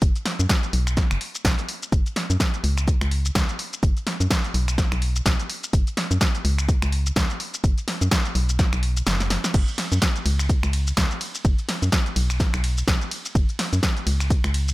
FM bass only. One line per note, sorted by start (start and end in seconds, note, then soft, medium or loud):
0.02 0.12 F#1 loud
0.39 0.47 F#2 loud
0.73 1.05 B1 loud
1.11 1.18 F#1 medium
1.45 1.55 B1 medium
1.92 2.02 F#1 loud
2.30 2.37 F#2 loud
2.64 2.95 C#2 loud
3.01 3.31 C#2 loud
3.35 3.45 C#2 medium
3.83 3.93 F#1 loud
4.20 4.28 F#2 loud
4.54 4.86 B1 loud
4.92 5.21 B1 loud
5.26 5.36 B1 medium
5.73 5.83 F#1 loud
6.11 6.18 F#2 loud
6.45 6.76 C#2 loud
6.82 7.12 C#2 loud
7.16 7.26 C#2 medium
7.64 7.74 F#1 loud
8.01 8.09 F#2 loud
8.35 8.67 B1 loud
8.73 9.02 B1 loud
9.07 9.38 F#1 loud
9.54 9.64 F#1 loud
9.92 9.99 F#2 loud
10.26 10.57 C#2 loud
10.63 10.93 C#2 loud
10.97 11.07 C#2 medium
11.45 11.55 F#1 loud
11.82 11.90 F#2 loud
12.16 12.48 B1 loud
12.54 12.83 B1 loud
12.88 12.98 B1 medium
13.35 13.45 F#1 loud
13.73 13.80 F#2 loud
14.07 14.38 C#2 loud
14.44 14.74 C#2 loud